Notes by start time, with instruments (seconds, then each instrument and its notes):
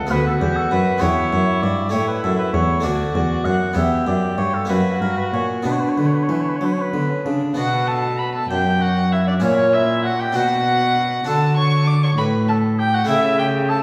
Already playing: violin A4, oboe F#5
0.07 cello D2, harpsichord B3 F#4
0.11 harpsichord D2, violin F#4, oboe B4
0.27 oboe A4
0.41 cello E2, harpsichord E2, oboe G4
0.56 oboe A4
0.71 harpsichord F#2, cello F#2, oboe B4
0.98 cello E2, harpsichord B3 E4 G4, oboe C#5
1.02 harpsichord E2, violin E4
1.32 cello F#2, harpsichord F#2
1.62 cello G2, harpsichord G2, oboe D5
1.89 cello A2, harpsichord A3 E4 G4, violin E4, oboe C#5
1.94 harpsichord A2
2.08 oboe B4
2.23 cello F#2, harpsichord F#2, oboe A4
2.39 oboe B4
2.53 cello E2, harpsichord E2, oboe C#5
2.80 cello D2, harpsichord A3 D4 F#4, violin F#4, oboe D5
2.85 harpsichord D2
3.15 cello E2, harpsichord E2
3.45 cello F#2, harpsichord F#2, oboe F#5
3.73 cello E2, harpsichord E2 B3 E4, violin G4, oboe E5
4.06 cello F#2, harpsichord F#2, oboe D5
4.37 cello G2, harpsichord G2, oboe C#5
4.54 oboe A4
4.65 cello F#2, harpsichord A#3 E4, oboe B4
4.70 harpsichord F#2, violin F#4
5.00 cello G2, harpsichord G2, oboe A#4
5.17 oboe B4
5.33 cello A#2, harpsichord A#2, oboe C#5
5.62 cello B2, harpsichord B2 B3 D4, violin D4, oboe B4
5.72 oboe C#5
5.81 oboe B4
5.89 oboe C#5
5.97 cello D3, harpsichord D3, oboe B4
6.06 oboe C#5
6.14 oboe B4
6.23 oboe C#5
6.29 cello E3, harpsichord E3, oboe B4
6.41 oboe C#5
6.49 oboe B4
6.56 oboe C#5
6.61 cello F#3, harpsichord F#3, violin D4, oboe B4
6.73 oboe C#5
6.77 violin C#4
6.81 oboe B4
6.93 cello D3, harpsichord D3, violin B3
7.09 violin C#4
7.25 cello C#3, harpsichord C#3, violin D4
7.54 cello B2, harpsichord B2 B3 D4, oboe F#4, violin F#5
7.87 oboe A4, violin A5
8.19 oboe B4, violin B5
8.35 oboe A4, violin A5
8.50 cello F#2, harpsichord F#2, oboe G4, violin G5
8.81 oboe F#4, violin F#5
9.12 oboe E4, violin E5
9.28 oboe D4, violin D5
9.40 harpsichord A#2 C#4 E4, cello A#2, oboe C#4, violin C#5
9.73 oboe E4, violin E5
10.04 oboe F#4, violin F#5
10.20 oboe G4, violin G5
10.32 cello B2, harpsichord B2 D4 F#4, oboe F#4, violin F#5
11.24 cello D3, harpsichord D3 D4 F#4, oboe A4, violin A5
11.57 oboe C#5, violin C#6
11.87 oboe D5, violin D6
12.03 oboe C#5, violin C#6
12.18 cello A2, harpsichord A2, oboe B4, violin B5
12.48 oboe A4, violin A5
12.79 oboe G4, violin G5
12.94 oboe F#4, violin F#5
13.05 cello C#3, harpsichord A3 E4 G4, oboe E4
13.09 harpsichord C#3, violin E5
13.39 oboe G4, violin G5
13.69 oboe A4, violin A5